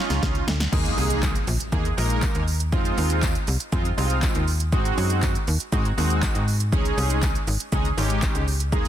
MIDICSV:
0, 0, Header, 1, 5, 480
1, 0, Start_track
1, 0, Tempo, 500000
1, 696, Time_signature, 4, 2, 24, 8
1, 8527, End_track
2, 0, Start_track
2, 0, Title_t, "Analog polysynth"
2, 0, Program_c, 0, 90
2, 0, Note_on_c, 0, 61, 86
2, 0, Note_on_c, 0, 63, 79
2, 0, Note_on_c, 0, 65, 99
2, 412, Note_off_c, 0, 61, 0
2, 413, Note_off_c, 0, 63, 0
2, 415, Note_off_c, 0, 65, 0
2, 692, Note_on_c, 0, 56, 88
2, 694, Note_on_c, 0, 58, 75
2, 694, Note_on_c, 0, 63, 80
2, 697, Note_on_c, 0, 68, 93
2, 1277, Note_off_c, 0, 56, 0
2, 1278, Note_off_c, 0, 58, 0
2, 1278, Note_off_c, 0, 63, 0
2, 1279, Note_off_c, 0, 68, 0
2, 1652, Note_on_c, 0, 56, 86
2, 1654, Note_on_c, 0, 58, 80
2, 1656, Note_on_c, 0, 63, 78
2, 1658, Note_on_c, 0, 68, 100
2, 1800, Note_off_c, 0, 56, 0
2, 1801, Note_off_c, 0, 58, 0
2, 1802, Note_off_c, 0, 63, 0
2, 1803, Note_off_c, 0, 68, 0
2, 1893, Note_on_c, 0, 56, 77
2, 1896, Note_on_c, 0, 58, 72
2, 1896, Note_on_c, 0, 63, 77
2, 1897, Note_on_c, 0, 70, 87
2, 2331, Note_off_c, 0, 56, 0
2, 2333, Note_off_c, 0, 58, 0
2, 2333, Note_off_c, 0, 63, 0
2, 2334, Note_off_c, 0, 70, 0
2, 2613, Note_on_c, 0, 56, 88
2, 2615, Note_on_c, 0, 60, 79
2, 2617, Note_on_c, 0, 63, 77
2, 2618, Note_on_c, 0, 65, 98
2, 3197, Note_off_c, 0, 56, 0
2, 3199, Note_off_c, 0, 60, 0
2, 3199, Note_off_c, 0, 63, 0
2, 3200, Note_off_c, 0, 65, 0
2, 3573, Note_on_c, 0, 56, 85
2, 3575, Note_on_c, 0, 60, 82
2, 3577, Note_on_c, 0, 63, 83
2, 3578, Note_on_c, 0, 65, 100
2, 3720, Note_off_c, 0, 56, 0
2, 3721, Note_off_c, 0, 60, 0
2, 3722, Note_off_c, 0, 63, 0
2, 3723, Note_off_c, 0, 65, 0
2, 3815, Note_on_c, 0, 56, 79
2, 3816, Note_on_c, 0, 60, 73
2, 3817, Note_on_c, 0, 63, 75
2, 3819, Note_on_c, 0, 65, 89
2, 4253, Note_off_c, 0, 56, 0
2, 4253, Note_off_c, 0, 60, 0
2, 4254, Note_off_c, 0, 63, 0
2, 4255, Note_off_c, 0, 65, 0
2, 4536, Note_on_c, 0, 56, 85
2, 4538, Note_on_c, 0, 60, 81
2, 4540, Note_on_c, 0, 63, 82
2, 4542, Note_on_c, 0, 66, 96
2, 5119, Note_off_c, 0, 56, 0
2, 5120, Note_off_c, 0, 60, 0
2, 5121, Note_off_c, 0, 63, 0
2, 5122, Note_off_c, 0, 66, 0
2, 5495, Note_on_c, 0, 56, 89
2, 5496, Note_on_c, 0, 60, 83
2, 5498, Note_on_c, 0, 63, 79
2, 5500, Note_on_c, 0, 66, 102
2, 5641, Note_off_c, 0, 56, 0
2, 5642, Note_off_c, 0, 60, 0
2, 5643, Note_off_c, 0, 63, 0
2, 5644, Note_off_c, 0, 66, 0
2, 5735, Note_on_c, 0, 56, 84
2, 5737, Note_on_c, 0, 60, 74
2, 5739, Note_on_c, 0, 63, 77
2, 5739, Note_on_c, 0, 66, 90
2, 6173, Note_off_c, 0, 56, 0
2, 6174, Note_off_c, 0, 60, 0
2, 6175, Note_off_c, 0, 63, 0
2, 6175, Note_off_c, 0, 66, 0
2, 6453, Note_on_c, 0, 56, 84
2, 6455, Note_on_c, 0, 61, 82
2, 6456, Note_on_c, 0, 63, 78
2, 6457, Note_on_c, 0, 68, 96
2, 7037, Note_off_c, 0, 56, 0
2, 7038, Note_off_c, 0, 61, 0
2, 7039, Note_off_c, 0, 63, 0
2, 7040, Note_off_c, 0, 68, 0
2, 7414, Note_on_c, 0, 56, 89
2, 7416, Note_on_c, 0, 61, 81
2, 7418, Note_on_c, 0, 63, 79
2, 7419, Note_on_c, 0, 68, 97
2, 7561, Note_off_c, 0, 56, 0
2, 7562, Note_off_c, 0, 61, 0
2, 7563, Note_off_c, 0, 63, 0
2, 7563, Note_off_c, 0, 68, 0
2, 7654, Note_on_c, 0, 56, 80
2, 7656, Note_on_c, 0, 61, 72
2, 7656, Note_on_c, 0, 63, 75
2, 7658, Note_on_c, 0, 67, 89
2, 8092, Note_off_c, 0, 56, 0
2, 8093, Note_off_c, 0, 61, 0
2, 8093, Note_off_c, 0, 63, 0
2, 8094, Note_off_c, 0, 67, 0
2, 8373, Note_on_c, 0, 56, 84
2, 8373, Note_on_c, 0, 58, 77
2, 8375, Note_on_c, 0, 63, 78
2, 8378, Note_on_c, 0, 68, 97
2, 8527, Note_off_c, 0, 56, 0
2, 8527, Note_off_c, 0, 58, 0
2, 8527, Note_off_c, 0, 63, 0
2, 8527, Note_off_c, 0, 68, 0
2, 8527, End_track
3, 0, Start_track
3, 0, Title_t, "FM bass"
3, 0, Program_c, 1, 39
3, 96, Note_on_c, 1, 37, 86
3, 192, Note_off_c, 1, 37, 0
3, 219, Note_on_c, 1, 37, 93
3, 410, Note_off_c, 1, 37, 0
3, 455, Note_on_c, 1, 38, 104
3, 648, Note_off_c, 1, 38, 0
3, 697, Note_on_c, 1, 39, 100
3, 889, Note_off_c, 1, 39, 0
3, 937, Note_on_c, 1, 36, 95
3, 1322, Note_off_c, 1, 36, 0
3, 1415, Note_on_c, 1, 34, 94
3, 1512, Note_off_c, 1, 34, 0
3, 1655, Note_on_c, 1, 39, 106
3, 1848, Note_off_c, 1, 39, 0
3, 1897, Note_on_c, 1, 34, 104
3, 2186, Note_off_c, 1, 34, 0
3, 2257, Note_on_c, 1, 39, 93
3, 2616, Note_on_c, 1, 41, 103
3, 2631, Note_off_c, 1, 39, 0
3, 2809, Note_off_c, 1, 41, 0
3, 2858, Note_on_c, 1, 39, 97
3, 3242, Note_off_c, 1, 39, 0
3, 3339, Note_on_c, 1, 36, 92
3, 3434, Note_off_c, 1, 36, 0
3, 3576, Note_on_c, 1, 41, 103
3, 3769, Note_off_c, 1, 41, 0
3, 3818, Note_on_c, 1, 36, 105
3, 4106, Note_off_c, 1, 36, 0
3, 4179, Note_on_c, 1, 39, 91
3, 4536, Note_on_c, 1, 44, 102
3, 4550, Note_off_c, 1, 39, 0
3, 4729, Note_off_c, 1, 44, 0
3, 4778, Note_on_c, 1, 42, 101
3, 5162, Note_off_c, 1, 42, 0
3, 5258, Note_on_c, 1, 39, 93
3, 5354, Note_off_c, 1, 39, 0
3, 5495, Note_on_c, 1, 44, 106
3, 5688, Note_off_c, 1, 44, 0
3, 5738, Note_on_c, 1, 39, 99
3, 6026, Note_off_c, 1, 39, 0
3, 6096, Note_on_c, 1, 44, 90
3, 6457, Note_on_c, 1, 37, 104
3, 6471, Note_off_c, 1, 44, 0
3, 6649, Note_off_c, 1, 37, 0
3, 6696, Note_on_c, 1, 36, 103
3, 7081, Note_off_c, 1, 36, 0
3, 7176, Note_on_c, 1, 32, 94
3, 7272, Note_off_c, 1, 32, 0
3, 7415, Note_on_c, 1, 37, 102
3, 7608, Note_off_c, 1, 37, 0
3, 7656, Note_on_c, 1, 32, 105
3, 7945, Note_off_c, 1, 32, 0
3, 8016, Note_on_c, 1, 37, 90
3, 8376, Note_on_c, 1, 39, 101
3, 8390, Note_off_c, 1, 37, 0
3, 8527, Note_off_c, 1, 39, 0
3, 8527, End_track
4, 0, Start_track
4, 0, Title_t, "Impact"
4, 0, Program_c, 2, 103
4, 695, Note_on_c, 2, 60, 86
4, 2616, Note_off_c, 2, 60, 0
4, 8527, End_track
5, 0, Start_track
5, 0, Title_t, "Drums"
5, 96, Note_on_c, 9, 42, 69
5, 98, Note_on_c, 9, 38, 66
5, 192, Note_off_c, 9, 42, 0
5, 194, Note_off_c, 9, 38, 0
5, 218, Note_on_c, 9, 36, 110
5, 218, Note_on_c, 9, 38, 82
5, 314, Note_off_c, 9, 36, 0
5, 314, Note_off_c, 9, 38, 0
5, 336, Note_on_c, 9, 42, 58
5, 432, Note_off_c, 9, 42, 0
5, 458, Note_on_c, 9, 38, 99
5, 554, Note_off_c, 9, 38, 0
5, 579, Note_on_c, 9, 38, 92
5, 580, Note_on_c, 9, 42, 74
5, 675, Note_off_c, 9, 38, 0
5, 676, Note_off_c, 9, 42, 0
5, 697, Note_on_c, 9, 36, 120
5, 698, Note_on_c, 9, 49, 104
5, 698, Note_on_c, 9, 82, 73
5, 793, Note_off_c, 9, 36, 0
5, 794, Note_off_c, 9, 49, 0
5, 794, Note_off_c, 9, 82, 0
5, 821, Note_on_c, 9, 42, 55
5, 821, Note_on_c, 9, 82, 56
5, 917, Note_off_c, 9, 42, 0
5, 917, Note_off_c, 9, 82, 0
5, 939, Note_on_c, 9, 46, 75
5, 939, Note_on_c, 9, 82, 54
5, 1035, Note_off_c, 9, 46, 0
5, 1035, Note_off_c, 9, 82, 0
5, 1058, Note_on_c, 9, 42, 82
5, 1058, Note_on_c, 9, 82, 86
5, 1154, Note_off_c, 9, 42, 0
5, 1154, Note_off_c, 9, 82, 0
5, 1178, Note_on_c, 9, 39, 106
5, 1178, Note_on_c, 9, 54, 87
5, 1178, Note_on_c, 9, 82, 71
5, 1179, Note_on_c, 9, 36, 110
5, 1274, Note_off_c, 9, 39, 0
5, 1274, Note_off_c, 9, 54, 0
5, 1274, Note_off_c, 9, 82, 0
5, 1275, Note_off_c, 9, 36, 0
5, 1300, Note_on_c, 9, 42, 59
5, 1300, Note_on_c, 9, 82, 60
5, 1396, Note_off_c, 9, 42, 0
5, 1396, Note_off_c, 9, 82, 0
5, 1415, Note_on_c, 9, 46, 75
5, 1415, Note_on_c, 9, 82, 56
5, 1511, Note_off_c, 9, 46, 0
5, 1511, Note_off_c, 9, 82, 0
5, 1539, Note_on_c, 9, 42, 75
5, 1539, Note_on_c, 9, 82, 78
5, 1635, Note_off_c, 9, 42, 0
5, 1635, Note_off_c, 9, 82, 0
5, 1654, Note_on_c, 9, 82, 86
5, 1656, Note_on_c, 9, 36, 113
5, 1750, Note_off_c, 9, 82, 0
5, 1752, Note_off_c, 9, 36, 0
5, 1777, Note_on_c, 9, 42, 52
5, 1777, Note_on_c, 9, 82, 53
5, 1873, Note_off_c, 9, 42, 0
5, 1873, Note_off_c, 9, 82, 0
5, 1900, Note_on_c, 9, 46, 83
5, 1900, Note_on_c, 9, 82, 60
5, 1996, Note_off_c, 9, 46, 0
5, 1996, Note_off_c, 9, 82, 0
5, 2016, Note_on_c, 9, 42, 72
5, 2016, Note_on_c, 9, 82, 71
5, 2112, Note_off_c, 9, 42, 0
5, 2112, Note_off_c, 9, 82, 0
5, 2135, Note_on_c, 9, 39, 120
5, 2135, Note_on_c, 9, 54, 76
5, 2137, Note_on_c, 9, 82, 85
5, 2138, Note_on_c, 9, 36, 114
5, 2231, Note_off_c, 9, 39, 0
5, 2231, Note_off_c, 9, 54, 0
5, 2233, Note_off_c, 9, 82, 0
5, 2234, Note_off_c, 9, 36, 0
5, 2254, Note_on_c, 9, 42, 57
5, 2254, Note_on_c, 9, 82, 56
5, 2350, Note_off_c, 9, 42, 0
5, 2350, Note_off_c, 9, 82, 0
5, 2377, Note_on_c, 9, 46, 70
5, 2377, Note_on_c, 9, 82, 48
5, 2473, Note_off_c, 9, 46, 0
5, 2473, Note_off_c, 9, 82, 0
5, 2498, Note_on_c, 9, 42, 82
5, 2498, Note_on_c, 9, 82, 78
5, 2594, Note_off_c, 9, 42, 0
5, 2594, Note_off_c, 9, 82, 0
5, 2616, Note_on_c, 9, 36, 122
5, 2616, Note_on_c, 9, 82, 67
5, 2712, Note_off_c, 9, 36, 0
5, 2712, Note_off_c, 9, 82, 0
5, 2738, Note_on_c, 9, 42, 58
5, 2738, Note_on_c, 9, 82, 58
5, 2834, Note_off_c, 9, 42, 0
5, 2834, Note_off_c, 9, 82, 0
5, 2857, Note_on_c, 9, 46, 78
5, 2857, Note_on_c, 9, 82, 56
5, 2953, Note_off_c, 9, 46, 0
5, 2953, Note_off_c, 9, 82, 0
5, 2975, Note_on_c, 9, 42, 86
5, 2975, Note_on_c, 9, 82, 88
5, 3071, Note_off_c, 9, 42, 0
5, 3071, Note_off_c, 9, 82, 0
5, 3096, Note_on_c, 9, 39, 106
5, 3096, Note_on_c, 9, 82, 72
5, 3097, Note_on_c, 9, 54, 88
5, 3098, Note_on_c, 9, 36, 109
5, 3192, Note_off_c, 9, 39, 0
5, 3192, Note_off_c, 9, 82, 0
5, 3193, Note_off_c, 9, 54, 0
5, 3194, Note_off_c, 9, 36, 0
5, 3218, Note_on_c, 9, 42, 58
5, 3218, Note_on_c, 9, 82, 59
5, 3314, Note_off_c, 9, 42, 0
5, 3314, Note_off_c, 9, 82, 0
5, 3334, Note_on_c, 9, 46, 79
5, 3334, Note_on_c, 9, 82, 57
5, 3430, Note_off_c, 9, 46, 0
5, 3430, Note_off_c, 9, 82, 0
5, 3459, Note_on_c, 9, 42, 80
5, 3459, Note_on_c, 9, 82, 76
5, 3555, Note_off_c, 9, 42, 0
5, 3555, Note_off_c, 9, 82, 0
5, 3575, Note_on_c, 9, 82, 88
5, 3576, Note_on_c, 9, 36, 116
5, 3671, Note_off_c, 9, 82, 0
5, 3672, Note_off_c, 9, 36, 0
5, 3698, Note_on_c, 9, 42, 56
5, 3698, Note_on_c, 9, 82, 51
5, 3794, Note_off_c, 9, 42, 0
5, 3794, Note_off_c, 9, 82, 0
5, 3820, Note_on_c, 9, 46, 84
5, 3820, Note_on_c, 9, 82, 60
5, 3916, Note_off_c, 9, 46, 0
5, 3916, Note_off_c, 9, 82, 0
5, 3935, Note_on_c, 9, 42, 72
5, 3935, Note_on_c, 9, 82, 72
5, 4031, Note_off_c, 9, 42, 0
5, 4031, Note_off_c, 9, 82, 0
5, 4054, Note_on_c, 9, 39, 121
5, 4056, Note_on_c, 9, 82, 83
5, 4057, Note_on_c, 9, 54, 79
5, 4058, Note_on_c, 9, 36, 113
5, 4150, Note_off_c, 9, 39, 0
5, 4152, Note_off_c, 9, 82, 0
5, 4153, Note_off_c, 9, 54, 0
5, 4154, Note_off_c, 9, 36, 0
5, 4175, Note_on_c, 9, 42, 59
5, 4175, Note_on_c, 9, 82, 56
5, 4271, Note_off_c, 9, 42, 0
5, 4271, Note_off_c, 9, 82, 0
5, 4297, Note_on_c, 9, 46, 69
5, 4297, Note_on_c, 9, 82, 48
5, 4393, Note_off_c, 9, 46, 0
5, 4393, Note_off_c, 9, 82, 0
5, 4417, Note_on_c, 9, 42, 74
5, 4417, Note_on_c, 9, 82, 80
5, 4513, Note_off_c, 9, 42, 0
5, 4513, Note_off_c, 9, 82, 0
5, 4536, Note_on_c, 9, 36, 126
5, 4536, Note_on_c, 9, 82, 69
5, 4632, Note_off_c, 9, 36, 0
5, 4632, Note_off_c, 9, 82, 0
5, 4658, Note_on_c, 9, 42, 57
5, 4658, Note_on_c, 9, 82, 57
5, 4754, Note_off_c, 9, 42, 0
5, 4754, Note_off_c, 9, 82, 0
5, 4778, Note_on_c, 9, 46, 77
5, 4778, Note_on_c, 9, 82, 55
5, 4874, Note_off_c, 9, 46, 0
5, 4874, Note_off_c, 9, 82, 0
5, 4896, Note_on_c, 9, 42, 84
5, 4896, Note_on_c, 9, 82, 87
5, 4992, Note_off_c, 9, 42, 0
5, 4992, Note_off_c, 9, 82, 0
5, 5016, Note_on_c, 9, 39, 107
5, 5016, Note_on_c, 9, 82, 71
5, 5017, Note_on_c, 9, 54, 88
5, 5018, Note_on_c, 9, 36, 116
5, 5112, Note_off_c, 9, 39, 0
5, 5112, Note_off_c, 9, 82, 0
5, 5113, Note_off_c, 9, 54, 0
5, 5114, Note_off_c, 9, 36, 0
5, 5138, Note_on_c, 9, 42, 59
5, 5138, Note_on_c, 9, 82, 58
5, 5234, Note_off_c, 9, 42, 0
5, 5234, Note_off_c, 9, 82, 0
5, 5255, Note_on_c, 9, 46, 78
5, 5255, Note_on_c, 9, 82, 55
5, 5351, Note_off_c, 9, 46, 0
5, 5351, Note_off_c, 9, 82, 0
5, 5378, Note_on_c, 9, 42, 78
5, 5378, Note_on_c, 9, 82, 80
5, 5474, Note_off_c, 9, 42, 0
5, 5474, Note_off_c, 9, 82, 0
5, 5495, Note_on_c, 9, 82, 90
5, 5496, Note_on_c, 9, 36, 112
5, 5591, Note_off_c, 9, 82, 0
5, 5592, Note_off_c, 9, 36, 0
5, 5619, Note_on_c, 9, 42, 53
5, 5619, Note_on_c, 9, 82, 53
5, 5715, Note_off_c, 9, 42, 0
5, 5715, Note_off_c, 9, 82, 0
5, 5740, Note_on_c, 9, 46, 84
5, 5740, Note_on_c, 9, 82, 61
5, 5836, Note_off_c, 9, 46, 0
5, 5836, Note_off_c, 9, 82, 0
5, 5858, Note_on_c, 9, 42, 69
5, 5858, Note_on_c, 9, 82, 72
5, 5954, Note_off_c, 9, 42, 0
5, 5954, Note_off_c, 9, 82, 0
5, 5976, Note_on_c, 9, 39, 123
5, 5977, Note_on_c, 9, 54, 80
5, 5978, Note_on_c, 9, 82, 88
5, 5979, Note_on_c, 9, 36, 109
5, 6072, Note_off_c, 9, 39, 0
5, 6073, Note_off_c, 9, 54, 0
5, 6074, Note_off_c, 9, 82, 0
5, 6075, Note_off_c, 9, 36, 0
5, 6097, Note_on_c, 9, 42, 59
5, 6097, Note_on_c, 9, 82, 58
5, 6193, Note_off_c, 9, 42, 0
5, 6193, Note_off_c, 9, 82, 0
5, 6219, Note_on_c, 9, 46, 66
5, 6219, Note_on_c, 9, 82, 48
5, 6315, Note_off_c, 9, 46, 0
5, 6315, Note_off_c, 9, 82, 0
5, 6339, Note_on_c, 9, 42, 80
5, 6339, Note_on_c, 9, 82, 80
5, 6435, Note_off_c, 9, 42, 0
5, 6435, Note_off_c, 9, 82, 0
5, 6456, Note_on_c, 9, 36, 121
5, 6457, Note_on_c, 9, 82, 70
5, 6552, Note_off_c, 9, 36, 0
5, 6553, Note_off_c, 9, 82, 0
5, 6579, Note_on_c, 9, 42, 57
5, 6579, Note_on_c, 9, 82, 58
5, 6675, Note_off_c, 9, 42, 0
5, 6675, Note_off_c, 9, 82, 0
5, 6698, Note_on_c, 9, 46, 77
5, 6698, Note_on_c, 9, 82, 55
5, 6794, Note_off_c, 9, 46, 0
5, 6794, Note_off_c, 9, 82, 0
5, 6817, Note_on_c, 9, 42, 87
5, 6817, Note_on_c, 9, 82, 89
5, 6913, Note_off_c, 9, 42, 0
5, 6913, Note_off_c, 9, 82, 0
5, 6936, Note_on_c, 9, 39, 108
5, 6937, Note_on_c, 9, 54, 93
5, 6937, Note_on_c, 9, 82, 73
5, 6938, Note_on_c, 9, 36, 109
5, 7032, Note_off_c, 9, 39, 0
5, 7033, Note_off_c, 9, 54, 0
5, 7033, Note_off_c, 9, 82, 0
5, 7034, Note_off_c, 9, 36, 0
5, 7059, Note_on_c, 9, 42, 57
5, 7059, Note_on_c, 9, 82, 60
5, 7155, Note_off_c, 9, 42, 0
5, 7155, Note_off_c, 9, 82, 0
5, 7174, Note_on_c, 9, 46, 77
5, 7174, Note_on_c, 9, 82, 57
5, 7270, Note_off_c, 9, 46, 0
5, 7270, Note_off_c, 9, 82, 0
5, 7299, Note_on_c, 9, 42, 80
5, 7299, Note_on_c, 9, 82, 80
5, 7395, Note_off_c, 9, 42, 0
5, 7395, Note_off_c, 9, 82, 0
5, 7414, Note_on_c, 9, 82, 90
5, 7415, Note_on_c, 9, 36, 112
5, 7510, Note_off_c, 9, 82, 0
5, 7511, Note_off_c, 9, 36, 0
5, 7536, Note_on_c, 9, 42, 53
5, 7536, Note_on_c, 9, 82, 51
5, 7632, Note_off_c, 9, 42, 0
5, 7632, Note_off_c, 9, 82, 0
5, 7658, Note_on_c, 9, 46, 81
5, 7658, Note_on_c, 9, 82, 61
5, 7754, Note_off_c, 9, 46, 0
5, 7754, Note_off_c, 9, 82, 0
5, 7775, Note_on_c, 9, 42, 68
5, 7775, Note_on_c, 9, 82, 68
5, 7871, Note_off_c, 9, 42, 0
5, 7871, Note_off_c, 9, 82, 0
5, 7893, Note_on_c, 9, 39, 115
5, 7895, Note_on_c, 9, 54, 80
5, 7895, Note_on_c, 9, 82, 87
5, 7897, Note_on_c, 9, 36, 108
5, 7989, Note_off_c, 9, 39, 0
5, 7991, Note_off_c, 9, 54, 0
5, 7991, Note_off_c, 9, 82, 0
5, 7993, Note_off_c, 9, 36, 0
5, 8015, Note_on_c, 9, 42, 58
5, 8015, Note_on_c, 9, 82, 58
5, 8111, Note_off_c, 9, 42, 0
5, 8111, Note_off_c, 9, 82, 0
5, 8138, Note_on_c, 9, 46, 65
5, 8138, Note_on_c, 9, 82, 46
5, 8234, Note_off_c, 9, 46, 0
5, 8234, Note_off_c, 9, 82, 0
5, 8258, Note_on_c, 9, 42, 76
5, 8258, Note_on_c, 9, 82, 78
5, 8354, Note_off_c, 9, 42, 0
5, 8354, Note_off_c, 9, 82, 0
5, 8376, Note_on_c, 9, 36, 115
5, 8376, Note_on_c, 9, 82, 70
5, 8472, Note_off_c, 9, 36, 0
5, 8472, Note_off_c, 9, 82, 0
5, 8497, Note_on_c, 9, 42, 58
5, 8497, Note_on_c, 9, 82, 55
5, 8527, Note_off_c, 9, 42, 0
5, 8527, Note_off_c, 9, 82, 0
5, 8527, End_track
0, 0, End_of_file